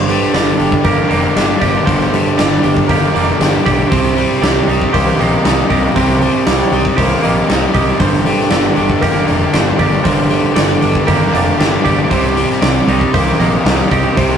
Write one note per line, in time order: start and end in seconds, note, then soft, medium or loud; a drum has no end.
0.00 0.14 G1 medium
0.00 1.10 G2 medium
0.00 1.11 G2 medium
0.00 0.33 C5 medium
0.08 1.36 D3 medium
0.08 0.59 G3 medium
0.08 open hi-hat soft
0.22 snare soft
0.34 0.50 G1 medium
0.34 1.09 D3 medium
0.34 2.38 G3 medium
0.34 1.10 D5 medium
0.34 snare loud
0.34 open hi-hat medium
0.58 0.75 G1 medium
0.58 1.36 G3 medium
0.58 1.35 D4 medium
0.58 open hi-hat medium
0.72 kick medium
0.84 1.00 G1 medium
0.84 2.88 A#3 medium
0.84 1.61 G4 medium
0.84 1.89 A#4 medium
0.84 kick loud
0.84 open hi-hat medium
1.10 1.26 F1 medium
1.10 1.60 D3 medium
1.10 3.15 A#3 medium
1.10 1.60 D5 medium
1.10 open hi-hat medium
1.36 1.52 G1 loud
1.36 2.12 G3 medium
1.36 2.63 D4 medium
1.36 snare loud
1.36 open hi-hat medium
1.61 1.77 G1 medium
1.61 2.36 D3 medium
1.61 2.90 G4 medium
1.61 1.87 D5 medium
1.61 kick medium
1.61 open hi-hat medium
1.86 2.18 G1 medium
1.86 3.15 G2 medium
1.86 2.38 C5 medium
1.86 kick loud
1.86 open hi-hat medium
2.01 snare soft
2.13 3.40 D3 medium
2.13 2.62 G3 medium
2.13 open hi-hat medium
2.37 2.54 G1 medium
2.37 3.13 D3 medium
2.37 4.16 G3 medium
2.37 2.89 D5 medium
2.37 snare loud
2.37 open hi-hat medium
2.62 2.79 G1 medium
2.62 3.40 G3 medium
2.62 3.39 D4 medium
2.62 open hi-hat medium
2.77 kick medium
2.88 3.05 G1 medium
2.88 3.95 A#3 medium
2.88 3.65 G4 medium
2.88 3.94 A#4 medium
2.88 kick loud
2.88 open hi-hat medium
3.14 3.30 F1 medium
3.14 3.64 D3 medium
3.14 3.93 A#3 medium
3.14 3.64 D5 medium
3.14 open hi-hat medium
3.40 3.55 G1 medium
3.40 4.16 G3 medium
3.40 3.91 D4 medium
3.40 snare medium
3.40 open hi-hat medium
3.65 3.82 B1 loud
3.65 3.91 D3 medium
3.65 4.92 G4 medium
3.65 3.90 D5 medium
3.65 kick medium
3.65 open hi-hat medium
3.90 4.22 C2 medium
3.90 5.18 C3 medium
3.90 4.41 C3 medium
3.90 4.42 C5 medium
3.90 kick loud
3.90 open hi-hat medium
4.06 snare soft
4.16 4.68 G3 medium
4.16 4.42 G3 medium
4.16 open hi-hat medium
4.32 snare soft
4.42 4.57 C2 medium
4.42 5.18 C3 medium
4.42 6.20 G3 medium
4.42 4.93 D5 medium
4.42 snare loud
4.42 open hi-hat medium
4.68 4.83 C2 medium
4.68 5.44 G3 medium
4.68 5.43 D#4 medium
4.68 open hi-hat medium
4.81 kick medium
4.93 5.09 C2 medium
4.93 6.50 A#3 medium
4.93 5.70 G4 medium
4.93 5.19 C5 medium
4.93 kick medium
4.93 open hi-hat medium
5.19 5.34 A#1 medium
5.19 5.68 C3 medium
5.19 7.22 A#3 medium
5.19 5.70 D#5 medium
5.19 open hi-hat soft
5.44 5.60 C2 medium
5.44 6.22 G3 medium
5.44 6.72 D#4 medium
5.44 snare loud
5.44 open hi-hat medium
5.69 5.86 C2 medium
5.69 5.94 C3 medium
5.69 6.96 G4 medium
5.69 5.96 D#5 medium
5.69 kick medium
5.69 open hi-hat medium
5.95 6.27 C2 medium
5.95 7.23 C3 medium
5.95 6.46 C3 medium
5.95 6.46 C5 medium
5.95 kick loud
5.95 open hi-hat medium
6.09 snare soft
6.21 6.47 G3 medium
6.21 6.72 G3 medium
6.21 open hi-hat medium
6.46 6.62 C2 medium
6.46 7.22 C3 medium
6.46 8.50 G3 medium
6.46 6.97 D5 medium
6.46 snare loud
6.46 open hi-hat medium
6.72 6.87 C2 loud
6.72 7.49 G3 medium
6.72 7.47 D#4 medium
6.72 open hi-hat medium
6.85 kick medium
6.96 7.13 C2 medium
6.96 9.01 A#3 medium
6.96 7.74 G4 medium
6.96 7.23 C5 medium
6.96 kick medium
6.96 open hi-hat medium
7.22 7.39 A#1 medium
7.22 7.73 C3 medium
7.22 9.27 A#3 medium
7.22 7.73 D#5 medium
7.22 open hi-hat medium
7.48 7.65 C2 loud
7.48 8.25 G3 medium
7.48 8.00 D#4 medium
7.48 snare loud
7.48 open hi-hat medium
7.74 7.90 C2 medium
7.74 8.00 C3 medium
7.74 9.01 G4 medium
7.74 7.99 D#5 medium
7.74 kick medium
7.74 open hi-hat medium
7.99 8.31 G1 medium
7.99 9.28 G2 medium
7.99 8.51 C5 medium
7.99 kick loud
7.99 open hi-hat medium
8.13 snare soft
8.25 9.54 D3 medium
8.25 8.75 G3 medium
8.25 open hi-hat medium
8.39 snare soft
8.50 8.67 G1 medium
8.50 9.26 D3 medium
8.50 10.56 G3 medium
8.50 9.27 D5 medium
8.50 snare loud
8.50 open hi-hat medium
8.76 8.93 G1 medium
8.76 9.52 G3 medium
8.76 9.52 D4 medium
8.76 open hi-hat soft
8.90 kick medium
9.01 9.18 G1 medium
9.01 11.06 A#3 medium
9.01 9.79 G4 medium
9.01 10.07 A#4 medium
9.01 kick loud
9.01 open hi-hat medium
9.27 9.44 F1 medium
9.27 9.78 D3 medium
9.27 11.33 A#3 medium
9.27 9.78 D5 medium
9.27 open hi-hat soft
9.53 9.70 G1 loud
9.53 10.29 G3 medium
9.53 10.81 D4 medium
9.53 snare loud
9.53 open hi-hat medium
9.79 9.95 G1 medium
9.79 10.55 D3 medium
9.79 11.07 G4 medium
9.79 10.05 D5 medium
9.79 kick medium
9.79 open hi-hat medium
10.04 10.37 G1 medium
10.04 11.33 G2 medium
10.04 11.34 G2 medium
10.04 10.55 C5 medium
10.04 kick loud
10.04 open hi-hat medium
10.30 11.60 D3 medium
10.30 10.80 G3 medium
10.30 open hi-hat medium
10.55 10.72 G1 medium
10.55 11.31 D3 medium
10.55 12.37 G3 medium
10.55 11.08 D5 medium
10.55 snare loud
10.55 open hi-hat medium
10.81 10.98 G1 medium
10.81 11.58 G3 medium
10.81 11.58 D4 medium
10.81 open hi-hat medium
10.95 kick medium
11.07 11.24 G1 medium
11.07 12.14 A#3 medium
11.07 11.84 G4 medium
11.07 12.13 A#4 medium
11.07 kick loud
11.07 open hi-hat medium
11.32 11.50 F1 loud
11.32 11.84 D3 medium
11.32 12.14 A#3 medium
11.32 11.83 D5 medium
11.32 open hi-hat medium
11.58 11.75 G1 loud
11.58 12.36 G3 medium
11.58 12.11 D4 medium
11.58 snare loud
11.58 open hi-hat medium
11.84 12.01 G1 medium
11.84 12.11 D3 medium
11.84 13.14 G4 medium
11.84 12.10 D5 medium
11.84 kick medium
11.84 open hi-hat medium
12.10 12.42 C2 medium
12.10 12.61 C3 medium
12.10 13.40 C3 medium
12.10 12.62 C5 medium
12.10 kick loud
12.10 open hi-hat medium
12.37 12.87 G3 medium
12.37 12.65 G3 medium
12.37 open hi-hat medium
12.50 snare soft
12.62 12.78 C2 medium
12.62 13.38 C3 medium
12.62 14.38 G3 medium
12.62 13.13 D5 medium
12.62 snare loud
12.62 open hi-hat medium
12.87 13.03 C2 medium
12.87 13.64 G3 medium
12.87 13.64 D#4 medium
12.87 open hi-hat soft
13.01 kick medium
13.14 13.30 C2 medium
13.14 14.38 A#3 medium
13.14 13.90 G4 medium
13.14 13.39 C5 medium
13.14 kick loud
13.14 open hi-hat medium
13.39 13.55 A#1 loud
13.39 13.91 C3 medium
13.39 14.38 A#3 medium
13.39 13.90 D#5 medium
13.39 open hi-hat medium
13.64 13.80 C2 medium
13.64 14.38 G3 medium
13.64 14.38 D#4 medium
13.64 snare loud
13.64 open hi-hat medium
13.91 14.07 C2 medium
13.91 14.16 C3 medium
13.91 14.38 G4 medium
13.91 14.17 D#5 medium
13.91 kick medium
13.91 open hi-hat medium
14.16 14.38 C2 medium
14.16 14.38 C3 medium
14.16 14.38 C5 medium
14.16 kick loud
14.16 open hi-hat medium